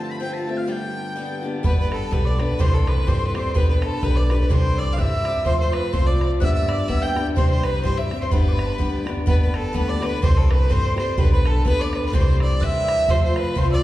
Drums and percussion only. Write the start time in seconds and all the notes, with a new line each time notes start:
1.64 bodhran
1.92 bodhran
2.12 bodhran
2.39 bodhran
2.50 bodhran
2.60 bodhran
2.87 bodhran
3.08 bodhran
3.35 bodhran
3.45 bodhran
3.56 bodhran
3.82 bodhran
4.03 bodhran
4.30 bodhran
4.40 bodhran
4.50 bodhran
4.98 bodhran
5.25 bodhran
5.36 bodhran
5.46 bodhran
5.73 bodhran
5.93 bodhran
6.21 bodhran
6.32 bodhran
6.42 bodhran
6.69 bodhran
6.89 bodhran
7.16 bodhran
7.27 bodhran
7.37 bodhran
7.63 bodhran
7.84 bodhran
8.11 bodhran
8.21 bodhran
8.31 bodhran
8.59 bodhran
8.80 bodhran
9.07 bodhran
9.17 bodhran
9.27 bodhran
9.54 bodhran
9.75 bodhran
10.02 bodhran
10.13 bodhran
10.23 bodhran
10.51 bodhran
10.71 bodhran
10.98 bodhran
11.08 bodhran
11.18 bodhran
11.45 bodhran
11.66 bodhran
11.93 bodhran
12.03 bodhran
12.13 bodhran
12.40 bodhran
12.61 bodhran
12.88 bodhran
12.99 bodhran
13.09 bodhran
13.36 bodhran
13.56 bodhran